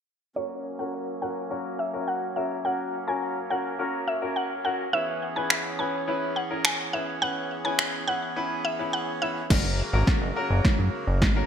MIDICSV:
0, 0, Header, 1, 6, 480
1, 0, Start_track
1, 0, Tempo, 571429
1, 304, Time_signature, 4, 2, 24, 8
1, 9630, End_track
2, 0, Start_track
2, 0, Title_t, "Synth pluck"
2, 0, Program_c, 0, 84
2, 304, Note_on_c, 0, 73, 106
2, 510, Note_off_c, 0, 73, 0
2, 664, Note_on_c, 0, 78, 78
2, 870, Note_off_c, 0, 78, 0
2, 1024, Note_on_c, 0, 78, 79
2, 1127, Note_off_c, 0, 78, 0
2, 1504, Note_on_c, 0, 76, 81
2, 1607, Note_off_c, 0, 76, 0
2, 1744, Note_on_c, 0, 78, 85
2, 1847, Note_off_c, 0, 78, 0
2, 1983, Note_on_c, 0, 76, 74
2, 2087, Note_off_c, 0, 76, 0
2, 2225, Note_on_c, 0, 78, 93
2, 2431, Note_off_c, 0, 78, 0
2, 2585, Note_on_c, 0, 80, 76
2, 2791, Note_off_c, 0, 80, 0
2, 2944, Note_on_c, 0, 78, 77
2, 3047, Note_off_c, 0, 78, 0
2, 3424, Note_on_c, 0, 76, 82
2, 3527, Note_off_c, 0, 76, 0
2, 3663, Note_on_c, 0, 78, 83
2, 3767, Note_off_c, 0, 78, 0
2, 3903, Note_on_c, 0, 78, 78
2, 4007, Note_off_c, 0, 78, 0
2, 4143, Note_on_c, 0, 76, 109
2, 4350, Note_off_c, 0, 76, 0
2, 4504, Note_on_c, 0, 80, 80
2, 4710, Note_off_c, 0, 80, 0
2, 4863, Note_on_c, 0, 80, 74
2, 4966, Note_off_c, 0, 80, 0
2, 5344, Note_on_c, 0, 78, 72
2, 5447, Note_off_c, 0, 78, 0
2, 5584, Note_on_c, 0, 80, 77
2, 5687, Note_off_c, 0, 80, 0
2, 5824, Note_on_c, 0, 76, 76
2, 5927, Note_off_c, 0, 76, 0
2, 6064, Note_on_c, 0, 78, 98
2, 6270, Note_off_c, 0, 78, 0
2, 6424, Note_on_c, 0, 80, 80
2, 6630, Note_off_c, 0, 80, 0
2, 6783, Note_on_c, 0, 78, 82
2, 6887, Note_off_c, 0, 78, 0
2, 7263, Note_on_c, 0, 76, 79
2, 7470, Note_off_c, 0, 76, 0
2, 7503, Note_on_c, 0, 78, 78
2, 7607, Note_off_c, 0, 78, 0
2, 7743, Note_on_c, 0, 76, 75
2, 7847, Note_off_c, 0, 76, 0
2, 9630, End_track
3, 0, Start_track
3, 0, Title_t, "Grand piano"
3, 0, Program_c, 1, 0
3, 302, Note_on_c, 1, 61, 67
3, 304, Note_on_c, 1, 66, 63
3, 306, Note_on_c, 1, 70, 75
3, 550, Note_off_c, 1, 61, 0
3, 551, Note_off_c, 1, 66, 0
3, 552, Note_off_c, 1, 70, 0
3, 661, Note_on_c, 1, 61, 70
3, 664, Note_on_c, 1, 66, 66
3, 666, Note_on_c, 1, 70, 78
3, 909, Note_off_c, 1, 61, 0
3, 911, Note_off_c, 1, 66, 0
3, 912, Note_off_c, 1, 70, 0
3, 1022, Note_on_c, 1, 61, 71
3, 1023, Note_on_c, 1, 66, 62
3, 1025, Note_on_c, 1, 70, 77
3, 1187, Note_off_c, 1, 61, 0
3, 1188, Note_off_c, 1, 66, 0
3, 1189, Note_off_c, 1, 70, 0
3, 1262, Note_on_c, 1, 61, 81
3, 1264, Note_on_c, 1, 66, 75
3, 1266, Note_on_c, 1, 70, 90
3, 1510, Note_off_c, 1, 61, 0
3, 1511, Note_off_c, 1, 66, 0
3, 1512, Note_off_c, 1, 70, 0
3, 1622, Note_on_c, 1, 61, 74
3, 1624, Note_on_c, 1, 66, 65
3, 1626, Note_on_c, 1, 70, 79
3, 1870, Note_off_c, 1, 61, 0
3, 1871, Note_off_c, 1, 66, 0
3, 1872, Note_off_c, 1, 70, 0
3, 1982, Note_on_c, 1, 61, 67
3, 1984, Note_on_c, 1, 66, 64
3, 1986, Note_on_c, 1, 70, 78
3, 2147, Note_off_c, 1, 61, 0
3, 2149, Note_off_c, 1, 66, 0
3, 2150, Note_off_c, 1, 70, 0
3, 2221, Note_on_c, 1, 61, 71
3, 2223, Note_on_c, 1, 66, 65
3, 2226, Note_on_c, 1, 70, 75
3, 2469, Note_off_c, 1, 61, 0
3, 2471, Note_off_c, 1, 66, 0
3, 2472, Note_off_c, 1, 70, 0
3, 2581, Note_on_c, 1, 61, 73
3, 2584, Note_on_c, 1, 66, 64
3, 2586, Note_on_c, 1, 70, 79
3, 2829, Note_off_c, 1, 61, 0
3, 2831, Note_off_c, 1, 66, 0
3, 2832, Note_off_c, 1, 70, 0
3, 2941, Note_on_c, 1, 61, 71
3, 2943, Note_on_c, 1, 66, 66
3, 2945, Note_on_c, 1, 70, 78
3, 3107, Note_off_c, 1, 61, 0
3, 3108, Note_off_c, 1, 66, 0
3, 3109, Note_off_c, 1, 70, 0
3, 3181, Note_on_c, 1, 61, 84
3, 3183, Note_on_c, 1, 66, 79
3, 3185, Note_on_c, 1, 70, 91
3, 3429, Note_off_c, 1, 61, 0
3, 3430, Note_off_c, 1, 66, 0
3, 3431, Note_off_c, 1, 70, 0
3, 3541, Note_on_c, 1, 61, 70
3, 3543, Note_on_c, 1, 66, 69
3, 3545, Note_on_c, 1, 70, 81
3, 3789, Note_off_c, 1, 61, 0
3, 3790, Note_off_c, 1, 66, 0
3, 3791, Note_off_c, 1, 70, 0
3, 3901, Note_on_c, 1, 61, 71
3, 3903, Note_on_c, 1, 66, 64
3, 3906, Note_on_c, 1, 70, 73
3, 4067, Note_off_c, 1, 61, 0
3, 4068, Note_off_c, 1, 66, 0
3, 4069, Note_off_c, 1, 70, 0
3, 4141, Note_on_c, 1, 61, 67
3, 4143, Note_on_c, 1, 64, 65
3, 4145, Note_on_c, 1, 71, 76
3, 4389, Note_off_c, 1, 61, 0
3, 4390, Note_off_c, 1, 64, 0
3, 4391, Note_off_c, 1, 71, 0
3, 4502, Note_on_c, 1, 61, 76
3, 4504, Note_on_c, 1, 64, 66
3, 4506, Note_on_c, 1, 71, 82
3, 4750, Note_off_c, 1, 61, 0
3, 4751, Note_off_c, 1, 64, 0
3, 4752, Note_off_c, 1, 71, 0
3, 4862, Note_on_c, 1, 61, 70
3, 4864, Note_on_c, 1, 64, 66
3, 4866, Note_on_c, 1, 71, 79
3, 5027, Note_off_c, 1, 61, 0
3, 5029, Note_off_c, 1, 64, 0
3, 5030, Note_off_c, 1, 71, 0
3, 5102, Note_on_c, 1, 61, 87
3, 5104, Note_on_c, 1, 64, 82
3, 5106, Note_on_c, 1, 71, 96
3, 5350, Note_off_c, 1, 61, 0
3, 5351, Note_off_c, 1, 64, 0
3, 5352, Note_off_c, 1, 71, 0
3, 5461, Note_on_c, 1, 61, 76
3, 5463, Note_on_c, 1, 64, 68
3, 5465, Note_on_c, 1, 70, 82
3, 5709, Note_off_c, 1, 61, 0
3, 5710, Note_off_c, 1, 64, 0
3, 5712, Note_off_c, 1, 70, 0
3, 5822, Note_on_c, 1, 61, 71
3, 5823, Note_on_c, 1, 64, 67
3, 5825, Note_on_c, 1, 71, 77
3, 5987, Note_off_c, 1, 61, 0
3, 5988, Note_off_c, 1, 64, 0
3, 5989, Note_off_c, 1, 71, 0
3, 6062, Note_on_c, 1, 61, 69
3, 6064, Note_on_c, 1, 64, 63
3, 6066, Note_on_c, 1, 71, 77
3, 6310, Note_off_c, 1, 61, 0
3, 6311, Note_off_c, 1, 64, 0
3, 6312, Note_off_c, 1, 71, 0
3, 6421, Note_on_c, 1, 61, 74
3, 6423, Note_on_c, 1, 64, 65
3, 6425, Note_on_c, 1, 71, 84
3, 6669, Note_off_c, 1, 61, 0
3, 6670, Note_off_c, 1, 64, 0
3, 6672, Note_off_c, 1, 71, 0
3, 6782, Note_on_c, 1, 61, 71
3, 6784, Note_on_c, 1, 64, 67
3, 6786, Note_on_c, 1, 71, 79
3, 6947, Note_off_c, 1, 61, 0
3, 6948, Note_off_c, 1, 64, 0
3, 6950, Note_off_c, 1, 71, 0
3, 7022, Note_on_c, 1, 61, 88
3, 7024, Note_on_c, 1, 64, 79
3, 7026, Note_on_c, 1, 71, 97
3, 7270, Note_off_c, 1, 61, 0
3, 7271, Note_off_c, 1, 64, 0
3, 7272, Note_off_c, 1, 71, 0
3, 7382, Note_on_c, 1, 61, 76
3, 7384, Note_on_c, 1, 64, 66
3, 7386, Note_on_c, 1, 71, 79
3, 7630, Note_off_c, 1, 61, 0
3, 7631, Note_off_c, 1, 64, 0
3, 7632, Note_off_c, 1, 71, 0
3, 7742, Note_on_c, 1, 61, 70
3, 7744, Note_on_c, 1, 64, 64
3, 7746, Note_on_c, 1, 71, 76
3, 7908, Note_off_c, 1, 61, 0
3, 7909, Note_off_c, 1, 64, 0
3, 7909, Note_off_c, 1, 71, 0
3, 7982, Note_on_c, 1, 61, 83
3, 7984, Note_on_c, 1, 66, 76
3, 7986, Note_on_c, 1, 70, 92
3, 8230, Note_off_c, 1, 61, 0
3, 8231, Note_off_c, 1, 66, 0
3, 8232, Note_off_c, 1, 70, 0
3, 8341, Note_on_c, 1, 61, 85
3, 8343, Note_on_c, 1, 66, 79
3, 8346, Note_on_c, 1, 70, 91
3, 8590, Note_off_c, 1, 61, 0
3, 8591, Note_off_c, 1, 66, 0
3, 8592, Note_off_c, 1, 70, 0
3, 8702, Note_on_c, 1, 61, 89
3, 8704, Note_on_c, 1, 66, 77
3, 8706, Note_on_c, 1, 70, 92
3, 9279, Note_off_c, 1, 61, 0
3, 9280, Note_off_c, 1, 66, 0
3, 9281, Note_off_c, 1, 70, 0
3, 9541, Note_on_c, 1, 61, 84
3, 9543, Note_on_c, 1, 66, 77
3, 9545, Note_on_c, 1, 70, 92
3, 9630, Note_off_c, 1, 61, 0
3, 9630, Note_off_c, 1, 66, 0
3, 9630, Note_off_c, 1, 70, 0
3, 9630, End_track
4, 0, Start_track
4, 0, Title_t, "Accordion"
4, 0, Program_c, 2, 21
4, 303, Note_on_c, 2, 54, 75
4, 303, Note_on_c, 2, 61, 69
4, 303, Note_on_c, 2, 73, 85
4, 304, Note_on_c, 2, 58, 67
4, 304, Note_on_c, 2, 70, 69
4, 4110, Note_off_c, 2, 54, 0
4, 4110, Note_off_c, 2, 58, 0
4, 4110, Note_off_c, 2, 70, 0
4, 4110, Note_off_c, 2, 73, 0
4, 4143, Note_on_c, 2, 52, 81
4, 4143, Note_on_c, 2, 59, 69
4, 4144, Note_on_c, 2, 68, 74
4, 4144, Note_on_c, 2, 73, 90
4, 7950, Note_off_c, 2, 52, 0
4, 7950, Note_off_c, 2, 59, 0
4, 7950, Note_off_c, 2, 61, 0
4, 7950, Note_off_c, 2, 68, 0
4, 7950, Note_off_c, 2, 73, 0
4, 7983, Note_on_c, 2, 49, 78
4, 7983, Note_on_c, 2, 54, 68
4, 7983, Note_on_c, 2, 58, 72
4, 7983, Note_on_c, 2, 66, 70
4, 7983, Note_on_c, 2, 70, 86
4, 9630, Note_off_c, 2, 49, 0
4, 9630, Note_off_c, 2, 54, 0
4, 9630, Note_off_c, 2, 58, 0
4, 9630, Note_off_c, 2, 66, 0
4, 9630, Note_off_c, 2, 70, 0
4, 9630, End_track
5, 0, Start_track
5, 0, Title_t, "Analog synth bass"
5, 0, Program_c, 3, 38
5, 7983, Note_on_c, 3, 30, 98
5, 8251, Note_off_c, 3, 30, 0
5, 8344, Note_on_c, 3, 32, 93
5, 8433, Note_off_c, 3, 32, 0
5, 8583, Note_on_c, 3, 30, 89
5, 8673, Note_off_c, 3, 30, 0
5, 8824, Note_on_c, 3, 30, 84
5, 8913, Note_off_c, 3, 30, 0
5, 8943, Note_on_c, 3, 42, 46
5, 8992, Note_off_c, 3, 42, 0
5, 9063, Note_on_c, 3, 42, 86
5, 9152, Note_off_c, 3, 42, 0
5, 9303, Note_on_c, 3, 30, 86
5, 9423, Note_on_c, 3, 32, 91
5, 9436, Note_off_c, 3, 30, 0
5, 9602, Note_off_c, 3, 32, 0
5, 9630, End_track
6, 0, Start_track
6, 0, Title_t, "Drums"
6, 4622, Note_on_c, 9, 26, 99
6, 4706, Note_off_c, 9, 26, 0
6, 5583, Note_on_c, 9, 26, 113
6, 5667, Note_off_c, 9, 26, 0
6, 6542, Note_on_c, 9, 26, 105
6, 6626, Note_off_c, 9, 26, 0
6, 7983, Note_on_c, 9, 36, 116
6, 7984, Note_on_c, 9, 38, 50
6, 7984, Note_on_c, 9, 49, 88
6, 8067, Note_off_c, 9, 36, 0
6, 8068, Note_off_c, 9, 38, 0
6, 8068, Note_off_c, 9, 49, 0
6, 8462, Note_on_c, 9, 36, 113
6, 8463, Note_on_c, 9, 38, 51
6, 8546, Note_off_c, 9, 36, 0
6, 8547, Note_off_c, 9, 38, 0
6, 8943, Note_on_c, 9, 36, 113
6, 8943, Note_on_c, 9, 38, 56
6, 9027, Note_off_c, 9, 36, 0
6, 9027, Note_off_c, 9, 38, 0
6, 9423, Note_on_c, 9, 36, 99
6, 9423, Note_on_c, 9, 38, 57
6, 9507, Note_off_c, 9, 36, 0
6, 9507, Note_off_c, 9, 38, 0
6, 9630, End_track
0, 0, End_of_file